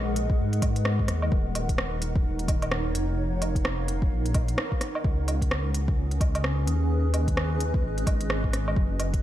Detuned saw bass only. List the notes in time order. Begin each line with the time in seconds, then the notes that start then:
Already playing: A#1
0.39 G#2
0.62 G#2
1.08 D#2
1.32 D#1
2.94 F1
4.11 A#1
5.04 C#2
6.67 D#2
7.83 G#1
8.06 G#1
8.53 G#1
8.76 F#1